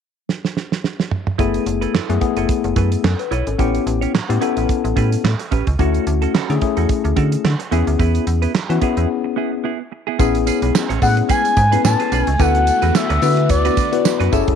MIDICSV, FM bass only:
0, 0, Header, 1, 2, 480
1, 0, Start_track
1, 0, Key_signature, 3, "minor"
1, 0, Tempo, 550459
1, 1212, Time_signature, 4, 2, 24, 8
1, 12690, End_track
2, 0, Start_track
2, 0, Title_t, "FM bass"
2, 0, Program_c, 0, 39
2, 1212, Note_on_c, 0, 30, 95
2, 1386, Note_off_c, 0, 30, 0
2, 1451, Note_on_c, 0, 30, 92
2, 1625, Note_off_c, 0, 30, 0
2, 1691, Note_on_c, 0, 42, 49
2, 1745, Note_off_c, 0, 42, 0
2, 1827, Note_on_c, 0, 42, 100
2, 1903, Note_off_c, 0, 42, 0
2, 2066, Note_on_c, 0, 30, 91
2, 2142, Note_off_c, 0, 30, 0
2, 2306, Note_on_c, 0, 30, 95
2, 2382, Note_off_c, 0, 30, 0
2, 2409, Note_on_c, 0, 42, 95
2, 2583, Note_off_c, 0, 42, 0
2, 2651, Note_on_c, 0, 42, 98
2, 2749, Note_off_c, 0, 42, 0
2, 2891, Note_on_c, 0, 35, 97
2, 2989, Note_off_c, 0, 35, 0
2, 3027, Note_on_c, 0, 32, 88
2, 3103, Note_off_c, 0, 32, 0
2, 3131, Note_on_c, 0, 33, 100
2, 3305, Note_off_c, 0, 33, 0
2, 3371, Note_on_c, 0, 33, 95
2, 3545, Note_off_c, 0, 33, 0
2, 3612, Note_on_c, 0, 45, 47
2, 3666, Note_off_c, 0, 45, 0
2, 3747, Note_on_c, 0, 45, 93
2, 3823, Note_off_c, 0, 45, 0
2, 3987, Note_on_c, 0, 33, 95
2, 4063, Note_off_c, 0, 33, 0
2, 4226, Note_on_c, 0, 33, 108
2, 4302, Note_off_c, 0, 33, 0
2, 4331, Note_on_c, 0, 45, 101
2, 4505, Note_off_c, 0, 45, 0
2, 4571, Note_on_c, 0, 45, 105
2, 4668, Note_off_c, 0, 45, 0
2, 4813, Note_on_c, 0, 33, 97
2, 4910, Note_off_c, 0, 33, 0
2, 4947, Note_on_c, 0, 37, 96
2, 5023, Note_off_c, 0, 37, 0
2, 5051, Note_on_c, 0, 38, 102
2, 5225, Note_off_c, 0, 38, 0
2, 5292, Note_on_c, 0, 38, 93
2, 5465, Note_off_c, 0, 38, 0
2, 5531, Note_on_c, 0, 50, 47
2, 5585, Note_off_c, 0, 50, 0
2, 5666, Note_on_c, 0, 50, 92
2, 5743, Note_off_c, 0, 50, 0
2, 5906, Note_on_c, 0, 40, 84
2, 5983, Note_off_c, 0, 40, 0
2, 6146, Note_on_c, 0, 38, 99
2, 6222, Note_off_c, 0, 38, 0
2, 6249, Note_on_c, 0, 50, 96
2, 6423, Note_off_c, 0, 50, 0
2, 6492, Note_on_c, 0, 50, 98
2, 6589, Note_off_c, 0, 50, 0
2, 6732, Note_on_c, 0, 40, 102
2, 6829, Note_off_c, 0, 40, 0
2, 6865, Note_on_c, 0, 38, 90
2, 6942, Note_off_c, 0, 38, 0
2, 6971, Note_on_c, 0, 40, 100
2, 7145, Note_off_c, 0, 40, 0
2, 7212, Note_on_c, 0, 40, 87
2, 7385, Note_off_c, 0, 40, 0
2, 7451, Note_on_c, 0, 52, 45
2, 7505, Note_off_c, 0, 52, 0
2, 7584, Note_on_c, 0, 52, 91
2, 7661, Note_off_c, 0, 52, 0
2, 7824, Note_on_c, 0, 40, 94
2, 7902, Note_off_c, 0, 40, 0
2, 8890, Note_on_c, 0, 33, 104
2, 9161, Note_off_c, 0, 33, 0
2, 9264, Note_on_c, 0, 35, 99
2, 9341, Note_off_c, 0, 35, 0
2, 9505, Note_on_c, 0, 33, 104
2, 9582, Note_off_c, 0, 33, 0
2, 9610, Note_on_c, 0, 45, 103
2, 9784, Note_off_c, 0, 45, 0
2, 10089, Note_on_c, 0, 44, 96
2, 10264, Note_off_c, 0, 44, 0
2, 10330, Note_on_c, 0, 45, 105
2, 10428, Note_off_c, 0, 45, 0
2, 10570, Note_on_c, 0, 35, 103
2, 10668, Note_off_c, 0, 35, 0
2, 10704, Note_on_c, 0, 37, 98
2, 10781, Note_off_c, 0, 37, 0
2, 10810, Note_on_c, 0, 38, 108
2, 11081, Note_off_c, 0, 38, 0
2, 11185, Note_on_c, 0, 40, 101
2, 11262, Note_off_c, 0, 40, 0
2, 11425, Note_on_c, 0, 38, 103
2, 11502, Note_off_c, 0, 38, 0
2, 11530, Note_on_c, 0, 50, 88
2, 11770, Note_on_c, 0, 38, 95
2, 11783, Note_off_c, 0, 50, 0
2, 11944, Note_off_c, 0, 38, 0
2, 12385, Note_on_c, 0, 42, 84
2, 12462, Note_off_c, 0, 42, 0
2, 12493, Note_on_c, 0, 30, 99
2, 12590, Note_off_c, 0, 30, 0
2, 12627, Note_on_c, 0, 28, 97
2, 12690, Note_off_c, 0, 28, 0
2, 12690, End_track
0, 0, End_of_file